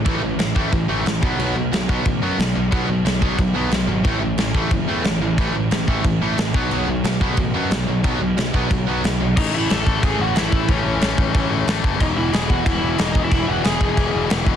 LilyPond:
<<
  \new Staff \with { instrumentName = "Lead electric guitar" } { \time 4/4 \key a \lydian \tempo 4 = 181 r1 | r1 | r1 | r1 |
r1 | r1 | r1 | <dis' dis''>8 <e' e''>8 <a' a''>4 <gis' gis''>8 <fis' fis''>8 <e' e''>4 |
<cis' cis''>2. r4 | <dis' dis''>8 <e' e''>8 <gis' gis''>8 <fis' fis''>8 <e' e''>4 <dis' dis''>8. <e' e''>16~ | <e' e''>8 <fis' fis''>8 <gis' gis''>2 r4 | }
  \new Staff \with { instrumentName = "Distorted electric guitar" } { \clef bass \time 4/4 \key a \lydian <a, e a>8 <a, e>8 <a, e>8 <a, e a>8 <a, e>8 <a, e a>8 <a, e>8 <b, fis b>8 | <b, fis b>8 <b, fis>8 <b, fis>8 <b, fis b>8 <b, fis>8 <b, fis b>8 <b, fis>8 <b, fis>8 | <b, fis b>8 <b, fis>8 <b, fis>8 <b, fis b>8 <b, fis>8 <b, fis b>8 <b, fis>8 <b, fis>8 | <a, e a>8 <a, e>8 <a, e>8 <a, e a>8 <a, e>8 <a, e a>8 <a, e>8 <a, e>8 |
<a, e a>8 <a, e>8 <a, e>8 <a, e a>8 <a, e>8 <a, e a>8 <a, e>8 <b, fis b>8 | <b, fis b>8 <b, fis>8 <b, fis>8 <b, fis b>8 <b, fis>8 <b, fis b>8 <b, fis>8 <b, fis>8 | <b, fis b>8 <b, fis>8 <b, fis>8 <b, fis b>8 <b, fis>8 <b, fis b>8 <b, fis>8 <b, fis>8 | <a, e a>8 <a, e a>8 <a, e a>8 <a, e a>8 <a, e a>8 <a, e a>8 <a, e a>8 <a, e a>8 |
<a, e a>8 <a, e a>8 <a, e a>8 <a, e a>8 <a, e a>8 <a, e a>8 <a, e a>8 <a, e a>8 | <e, b, e>8 <e, b, e>8 <e, b, e>8 <e, b, e>8 <e, b, e>8 <e, b, e>8 <e, b, e>8 <e, b, e>8 | <e, b, e>8 <e, b, e>8 <e, b, e>8 <e, b, e>8 <e, b, e>8 <e, b, e>8 <e, b, e>8 <e, b, e>8 | }
  \new Staff \with { instrumentName = "Distorted electric guitar" } { \clef bass \time 4/4 \key a \lydian <a, e a>8 <a, e>8 <a, e>8 <a, e a>8 <a, e>8 <a, e a>8 <a, e>8 <b, fis b>8 | <b, fis b>8 <b, fis>8 <b, fis>8 <b, fis b>8 <b, fis>8 <b, fis b>8 <b, fis>8 <b, fis>8 | <b, fis b>8 <b, fis>8 <b, fis>8 <b, fis b>8 <b, fis>8 <b, fis b>8 <b, fis>8 <b, fis>8 | <a, e a>8 <a, e>8 <a, e>8 <a, e a>8 <a, e>8 <a, e a>8 <a, e>8 <a, e>8 |
<a, e a>8 <a, e>8 <a, e>8 <a, e a>8 <a, e>8 <a, e a>8 <a, e>8 <b, fis b>8 | <b, fis b>8 <b, fis>8 <b, fis>8 <b, fis b>8 <b, fis>8 <b, fis b>8 <b, fis>8 <b, fis>8 | <b, fis b>8 <b, fis>8 <b, fis>8 <b, fis b>8 <b, fis>8 <b, fis b>8 <b, fis>8 <b, fis>8 | r1 |
r1 | r1 | r1 | }
  \new Staff \with { instrumentName = "Picked electric bass" } { \clef bass \time 4/4 \key a \lydian a,,8 a,,8 a,,8 a,,8 a,,8 a,,8 a,,8 b,,8 | b,,8 b,,8 b,,8 b,,8 a,,8 fis,8 b,,8 b,,8 | b,,8 b,,8 b,,8 b,,8 b,,8 b,,8 b,,8 gis,,8 | a,,8 a,,8 a,,8 a,,8 fis,,8 e,8 a,,8 a,,8 |
a,,8 a,,8 a,,8 a,,8 a,,8 a,,8 a,,8 b,,8 | b,,8 b,,8 b,,8 b,,8 a,,8 fis,8 b,,8 b,,8 | b,,8 b,,8 b,,8 b,,8 b,,8 b,,8 b,,8 b,,8 | a,,8 a,,8 a,,8 a,,8 a,,8 a,,8 a,,8 a,,8 |
a,,8 a,,8 a,,8 a,,8 a,,8 a,,8 a,,8 fis,,8 | e,,8 e,,8 e,,8 e,,8 e,,8 e,,8 e,,8 e,,8 | e,,8 e,,8 e,,8 e,,8 e,,8 e,,8 e,,8 e,,8 | }
  \new DrumStaff \with { instrumentName = "Drums" } \drummode { \time 4/4 <cymc bd>4 <cymc sn>8 bd8 <cymc bd>4 <cymc sn>8 bd8 | cymc4 <cymc sn>8 bd8 <cymc bd>4 <cymc sn>4 | <cymc bd>4 <cymc sn>8 bd8 <cymc bd>4 <cymc sn>4 | <cymc bd>4 <cymc sn>8 bd8 <cymc bd>4 <cymc sn>4 |
<cymc bd>4 <cymc sn>8 bd8 <cymc bd>4 <cymc sn>8 bd8 | cymc4 <cymc sn>8 bd8 <cymc bd>4 <cymc sn>4 | <cymc bd>4 <cymc sn>8 bd8 <cymc bd>4 <cymc sn>4 | <cymc bd>4 <cymc sn>8 bd8 <cymc bd>4 <cymc sn>8 bd8 |
<cymc bd>4 <cymc sn>8 bd8 <cymc bd>4 <cymc sn>8 bd8 | <cymc bd>4 <cymc sn>8 bd8 <cymc bd>4 <cymc sn>8 bd8 | <cymc bd>4 <cymc sn>8 bd8 <cymc bd>4 <cymc sn>8 bd8 | }
>>